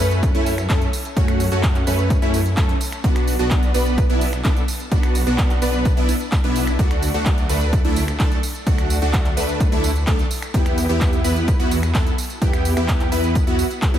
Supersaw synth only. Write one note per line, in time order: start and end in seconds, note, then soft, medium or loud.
0.00 0.32 A3 medium
0.00 0.32 C#4 medium
0.00 0.32 B4 medium
0.35 0.53 A3 loud
0.35 0.53 C#4 medium
0.35 0.53 E4 loud
0.70 0.88 A3 medium
0.70 0.88 C#4 medium
0.70 0.88 A4 medium
1.17 1.49 A3 medium
1.17 1.49 C#4 medium
1.17 1.49 F#4 loud
1.52 1.84 A3 medium
1.52 1.84 C#4 medium
1.52 1.84 F#4 loud
1.87 2.19 A3 medium
1.87 2.19 C#4 medium
1.87 2.19 B4 medium
2.22 2.41 A3 loud
2.22 2.41 C#4 medium
2.22 2.41 E4 loud
2.57 2.76 A3 medium
2.57 2.76 C#4 medium
2.57 2.76 A4 medium
3.04 3.36 B3 medium
3.04 3.36 D4 medium
3.04 3.36 F#4 loud
3.39 3.72 B3 medium
3.39 3.72 D4 medium
3.39 3.72 F#4 loud
3.74 4.07 B3 medium
3.74 4.07 D4 medium
3.74 4.07 B4 medium
4.10 4.28 B3 loud
4.10 4.28 D4 medium
4.10 4.28 E4 loud
4.45 4.63 B3 medium
4.45 4.63 D4 medium
4.45 4.63 A4 medium
4.92 5.24 B3 medium
4.92 5.24 D4 medium
4.92 5.24 F#4 loud
5.27 5.59 B3 medium
5.27 5.59 D4 medium
5.27 5.59 F#4 loud
5.62 5.94 B3 medium
5.62 5.94 D4 medium
5.62 5.94 B4 medium
5.97 6.16 B3 loud
5.97 6.16 D4 medium
5.97 6.16 E4 loud
6.44 6.76 B3 loud
6.44 6.76 D4 medium
6.44 6.76 E4 loud
6.79 7.12 A3 medium
6.79 7.12 D4 medium
6.79 7.12 F#4 medium
7.14 7.47 A3 medium
7.14 7.47 D4 medium
7.14 7.47 F#4 medium
7.49 7.82 A3 medium
7.49 7.82 D4 medium
7.49 7.82 B4 medium
7.85 8.03 A3 loud
7.85 8.03 D4 medium
7.85 8.03 E4 loud
8.20 8.38 A3 medium
8.20 8.38 D4 medium
8.20 8.38 A4 medium
8.67 8.99 A3 medium
8.67 8.99 D4 medium
8.67 8.99 F#4 loud
9.02 9.34 A3 medium
9.02 9.34 D4 medium
9.02 9.34 F#4 loud
9.37 9.69 A3 medium
9.37 9.69 D4 medium
9.37 9.69 B4 medium
9.72 9.91 A3 loud
9.72 9.91 D4 medium
9.72 9.91 E4 loud
10.07 10.26 A3 medium
10.07 10.26 D4 medium
10.07 10.26 A4 medium
10.54 10.86 B3 medium
10.54 10.86 E4 medium
10.54 10.86 G4 loud
10.89 11.22 B3 medium
10.89 11.22 E4 medium
10.89 11.22 G4 loud
11.24 11.57 B3 medium
11.24 11.57 E4 medium
11.24 11.57 B4 medium
11.60 11.78 B3 loud
11.60 11.78 E4 medium
11.60 11.78 F#4 loud
11.95 12.13 B3 medium
11.95 12.13 E4 medium
11.95 12.13 A4 medium
12.42 12.74 B3 medium
12.42 12.74 E4 medium
12.42 12.74 G4 loud
12.77 13.09 B3 medium
12.77 13.09 E4 medium
12.77 13.09 G4 medium
13.12 13.44 B3 medium
13.12 13.44 E4 medium
13.12 13.44 B4 medium
13.47 13.66 B3 loud
13.47 13.66 E4 medium
13.47 13.66 F#4 loud
13.94 13.99 B3 loud
13.94 13.99 E4 medium
13.94 13.99 F#4 loud